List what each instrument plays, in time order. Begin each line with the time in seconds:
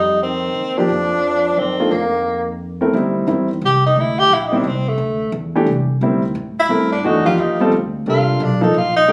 Already playing: upright bass F2, trombone G3, tenor saxophone D#4
0.23 trombone D#3, tenor saxophone C4
0.55 upright bass D#2
0.77 grand piano F3 A#3 D#4 G4, trombone F3, tenor saxophone D4
0.89 upright bass F2
1.57 upright bass F#2, trombone D#3, tenor saxophone C4
1.79 grand piano D#3 A3 D4 F4
1.91 upright bass F2, trombone D#3, tenor saxophone A#3
2.81 grand piano A3 C4 E4 A#4
2.93 upright bass D2, grand piano G3 C4 D#4 E4
3.27 upright bass E2, grand piano D#3 G3 C4 E4
3.61 upright bass C2, tenor saxophone G4
3.86 tenor saxophone D#4
3.96 upright bass D2, tenor saxophone E4
4.19 tenor saxophone G4
4.29 upright bass A#1
4.34 tenor saxophone E4
4.46 tenor saxophone D#4
4.52 grand piano D#3 G3 C4 E4
4.57 tenor saxophone D4
4.64 upright bass C2, tenor saxophone C4
4.88 tenor saxophone A3
4.98 upright bass D2
5.32 upright bass E2
5.55 grand piano E3 A3 D4 G4
5.66 upright bass C2
6.01 upright bass D2, grand piano D#3 G3 C4 E4
6.35 upright bass A2
6.60 tenor saxophone E4
6.69 upright bass G2, grand piano A3 C4 E4 A#4
6.92 tenor saxophone D4
7.03 upright bass F2, grand piano E3 A3 D4 F#4, tenor saxophone D#4
7.25 grand piano F3 A#3 D#4 G4, tenor saxophone F4
7.38 upright bass D#2, tenor saxophone D#4
7.60 grand piano G3 C4 F4 A4
7.72 upright bass D2
8.06 upright bass C2, grand piano D4 G4 A4 A#4, tenor saxophone F4
8.40 upright bass B1, tenor saxophone D4
8.61 grand piano F3 A#3 D#4 A4, tenor saxophone D#4
8.74 upright bass A#1, tenor saxophone F4
8.96 tenor saxophone D#4
9.08 upright bass C2, grand piano A3 D4 G4 A#4